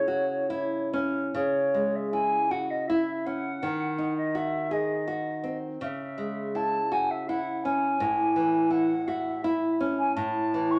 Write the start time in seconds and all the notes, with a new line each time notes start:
Already playing: C#3 E4 C#5
0.08 F#4
0.50 E4
0.93 C#4
1.35 C#3 C#5
1.74 G#3
1.95 E5
2.12 E4 G#5
2.51 F#4 F#5
2.70 D#5
2.87 E4 E5
3.26 C#4 F#5
3.63 D#3
3.98 D#4
4.17 D#5
4.35 F#4 E5
4.71 G#4 D#5
5.08 F#4
5.44 C4
5.81 C#3 E5
6.18 G#3
6.55 E4 A5
6.92 F#4 G#5
7.10 E5
7.28 E4 F#5
7.64 C#4 G#5
8.00 A2
8.36 E3
8.71 E4 F#5
9.07 F#4 E5
9.44 E4
9.81 C#4
9.98 G#5
10.15 A2 A5
10.54 E3
10.71 C#6